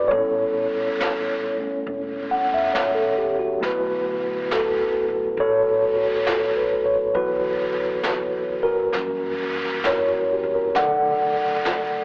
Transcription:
Already playing: tine electric piano D4 E4 F#4 B4 D5
0.08 upright bass A1, tine electric piano G3 B3 C#5
0.12 tine electric piano C#4 A4, brush sweep
0.18 tine electric piano E4
1.00 snare, hi-hat pedal
1.57 tine electric piano A3 C#4, muted upright bass stroke
1.87 upright bass E1, brush sweep
2.31 tine electric piano F#5
2.54 tine electric piano E5
2.74 upright bass D#2, tine electric piano C#5, snare, hi-hat pedal
2.95 tine electric piano A4
3.18 tine electric piano G4
3.39 tine electric piano F#4
3.60 upright bass D2, tine electric piano F#3 A3 B3 E4 F#4, brush sweep, snare
3.65 tine electric piano B4
4.51 tine electric piano F#4 A4, snare, hi-hat pedal
4.79 upright bass F#2
5.08 upright bass A2
5.37 upright bass A1, tine electric piano A4 C#5, brush sweep
5.96 tine electric piano F#4
6.27 tine electric piano A4, snare, hi-hat pedal
6.57 tine electric piano B4
6.85 tine electric piano C#5
7.14 upright bass D2, tine electric piano E3 F#3 B3 E4 F#4 B4, brush sweep
8.03 snare, hi-hat pedal
8.63 tine electric piano F#4 A#4
8.92 upright bass F#2, tine electric piano E3 G3 A#3 C#4, brush sweep, snare
9.84 tine electric piano E4 C#5, snare, hi-hat pedal
9.88 tine electric piano A#4
10.08 tine electric piano F#4
10.13 upright bass E2
10.32 tine electric piano G4
10.43 upright bass C2
10.55 tine electric piano A#4
10.74 upright bass B1, tine electric piano D3 F#3 A3 F#5, brush sweep, snare
10.78 tine electric piano C#3 A4 D5
11.65 snare, hi-hat pedal

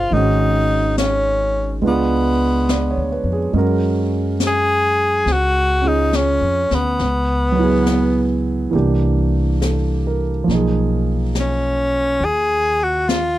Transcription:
Already playing: grand piano G#3 C#4 F4 G#4 A#4 C5, tenor saxophone F4
0.11 upright bass G#1, grand piano D#3 G#3 C#4, tenor saxophone D#4, brush sweep
0.16 grand piano F#4
0.98 tenor saxophone C#4, snare, hi-hat pedal
1.82 upright bass C#2, grand piano G#3 B3 D4, brush sweep
1.86 tenor saxophone B3, grand piano F4
2.69 grand piano D5, snare, hi-hat pedal
2.91 grand piano C#5
2.97 upright bass D2
3.12 grand piano B4
3.24 upright bass F2
3.33 grand piano G#4
3.53 upright bass F#2, grand piano G#3 C#4 F#4, brush sweep
3.58 grand piano A#4
4.40 snare, hi-hat pedal
4.47 tenor saxophone G#4
5.26 upright bass C#2, brush sweep, snare
5.32 tenor saxophone F#4
5.82 grand piano C#4 F4 G#4
5.88 tenor saxophone D#4
6.13 tenor saxophone C#4, snare, hi-hat pedal
6.41 upright bass F2
6.71 upright bass D2, snare
6.75 tenor saxophone B3
6.99 upright bass C#2, brush sweep, snare
7.52 grand piano F#3 B3
7.59 grand piano E4
7.63 grand piano G#4
7.86 snare, hi-hat pedal
8.71 upright bass C2, grand piano E3 A#3 D4, brush sweep
8.75 grand piano G4
9.61 grand piano A4, snare, hi-hat pedal
10.07 grand piano A#4
10.44 upright bass B1, grand piano F3 A#3
10.49 grand piano D#4, brush sweep, snare
10.55 grand piano G#4
11.35 snare, hi-hat pedal
11.40 tenor saxophone C#4
12.20 upright bass D#2, brush sweep
12.25 tenor saxophone G#4
12.83 tenor saxophone F#4
13.08 tenor saxophone F4, snare, hi-hat pedal

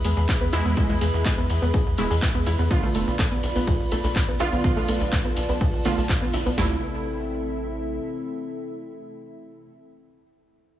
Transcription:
Already playing: synth stab B2 G#3 E4, analog synth pad G#4 B4 E5 B5
0.04 analog synth bass E2, synth arpeggio sound G#3 G#4, closed hi-hat, shekere
0.17 analog synth bass E2, synth arpeggio sound G#3 G#4, shekere
0.29 kick, clap, ride, shekere
0.41 analog synth bass E2, synth arpeggio sound B3 B4
0.53 analog synth bass E2, synth stab B2 G#3 E4, synth arpeggio sound E4 E5, closed hi-hat, shekere
0.65 analog synth bass E2, synth arpeggio sound B3 B4, shekere
0.77 synth stab B2 G#3 E4, kick, ride, shekere
0.89 analog synth bass E2, synth arpeggio sound G#3 G#4
1.01 analog synth bass E2, synth arpeggio sound G#3 G#4, closed hi-hat, shekere
1.14 analog synth bass E2, shekere
1.25 synth arpeggio sound G#3 G#4, kick, clap, ride, shekere
1.38 analog synth bass E2, synth arpeggio sound B3 B4
1.49 analog synth bass E2, closed hi-hat, shekere
1.62 analog synth bass E2, synth arpeggio sound B3 B4, shekere
1.73 synth arpeggio sound G#3 G#4, kick, ride, shekere
1.86 analog synth bass E2
1.98 analog synth bass E1, synth stab B2 G#3 E4, synth arpeggio sound G#3 G#4, closed hi-hat, shekere
2.10 analog synth bass E2, synth arpeggio sound G#3 G#4, shekere
2.22 kick, clap, ride, shekere
2.35 analog synth bass E2, synth arpeggio sound B3 B4
2.46 analog synth bass E2, synth arpeggio sound E4 E5, closed hi-hat, shekere
2.59 analog synth bass E2, synth arpeggio sound B3 B4, shekere
2.71 synth stab D3 B3 F4, analog synth pad F4 B4 D5 B5, kick, ride, shekere
2.83 analog synth bass B1, synth arpeggio sound A3 A4
2.94 analog synth bass F1, synth arpeggio sound A3 A4, closed hi-hat, shekere
3.07 analog synth bass B1, shekere
3.19 synth arpeggio sound A3 A4, kick, clap, ride, shekere
3.31 analog synth bass B1, synth arpeggio sound B3 B4
3.43 analog synth bass B1, closed hi-hat, shekere
3.56 analog synth bass B1, synth arpeggio sound B3 B4, shekere
3.67 synth arpeggio sound G#3 G#4, kick, ride, shekere
3.80 analog synth bass A1
3.91 analog synth bass B1, synth arpeggio sound A3 A4, closed hi-hat, shekere
4.04 analog synth bass B1, synth arpeggio sound A3 A4, shekere
4.16 kick, clap, ride
4.28 analog synth bass B1, synth arpeggio sound B3 B4
4.40 analog synth bass B1, synth stab D3 B3 F4, synth arpeggio sound E4 E5, closed hi-hat, shekere
4.52 analog synth bass B1, synth arpeggio sound B3 B4, shekere
4.64 synth stab D3 B3 F4, analog synth pad A5, kick, ride, shekere
4.77 analog synth bass B1, synth arpeggio sound A3 A4
4.88 analog synth bass B1, synth arpeggio sound A3 A4, closed hi-hat, shekere
5.00 analog synth bass B1, shekere
5.12 synth arpeggio sound A3 A4, kick, clap, ride, shekere
5.25 analog synth bass B1, synth arpeggio sound B3 B4
5.36 analog synth bass B1, closed hi-hat, shekere
5.49 analog synth bass B1, synth arpeggio sound B3 B4, shekere
5.60 synth arpeggio sound G#3 G#4, kick, ride, shekere
5.73 analog synth bass B1
5.85 analog synth bass B1, synth stab D3 B3 F4, synth arpeggio sound A3 A4, closed hi-hat, shekere
5.97 analog synth bass B1, synth arpeggio sound A3 A4, shekere
6.09 kick, clap, ride, shekere
6.22 analog synth bass B1, synth arpeggio sound B3 B4
6.33 analog synth bass B1, synth arpeggio sound E4 E5, closed hi-hat, shekere
6.46 analog synth bass B1, synth arpeggio sound B3 B4, shekere
6.58 analog synth bass A1, synth stab C3 A3 E4, synth arpeggio sound A3, analog synth pad C4 E4 A4 E5, snare, floor tom

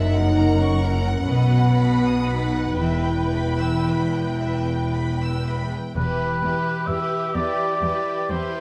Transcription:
Already playing: double bass section F#1, cello section F#2, harp F#2 E5, french horn section D#4, viola section A#4, violin section E5 F#5
0.16 violin section F#5
0.38 harp C#4, violin section A#5
0.60 violin section C#6
0.83 french horn section C#4, harp E4 A#4, violin section A#5
1.07 violin section F#5
1.30 double bass section B1, cello section B2, harp B2, french horn section B3, viola section B4, violin section D#5
1.55 violin section F#5
1.79 violin section B5
2.04 violin section D#6
2.27 harp D#4 F#4, french horn section D#4, violin section B5
2.54 violin section F#5
2.79 double bass section E1, cello section E2, harp E3, french horn section E4, violin section E5 G5
3.05 violin section G5
3.34 harp E4, violin section B5
3.60 violin section E6
3.87 harp B4, violin section B5
4.14 violin section G5
4.40 violin section E5, harp E5
4.68 violin section G5
4.94 harp G5, violin section B5
5.22 violin section E6
5.48 harp E5, violin section B5
5.74 violin section G5
5.96 double bass section E1, cello section E2, harp E3, violin section E4 G4 B4, viola section G4, oboe B4
6.42 cello section E2, harp E4, violin section E4 G4 B4
6.87 cello section E2, violin section E4 G4 B4, harp B4, oboe E5
7.34 cello section E2, violin section E4 G4 B4, oboe D5, harp E5
7.82 cello section E2, violin section E4 G4, harp G5
7.86 violin section B4
8.30 cello section E2, violin section E4 G4 B4, oboe C5, harp E5

